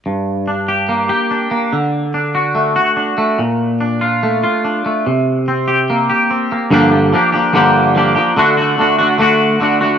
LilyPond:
\new Staff \with { instrumentName = "Clean electric guitar" } { \time 4/4 \key g \minor \tempo 4 = 144 g,4 d'8 g'8 bes8 g'8 d'8 bes8 | d4 d'8 fis'8 a8 fis'8 d'8 a8 | bes,4 d'8 f'8 a8 f'8 d'8 a8 | c4 c'8 g'8 bes8 g'8 c'8 bes8 |
<g, d f bes d' g'>8 <f bes d' g'>8 <f bes d' g'>8 <f bes d' g'>8 <g, d f bes d' g'>4 <f bes d' g'>8 <f bes d' g'>8 | <d a d' fis'>8 <a d' fis'>8 <d a d' fis'>8 <a d' fis'>8 <d a d' fis'>4 <d a d' fis'>8 <a d' fis'>8 | }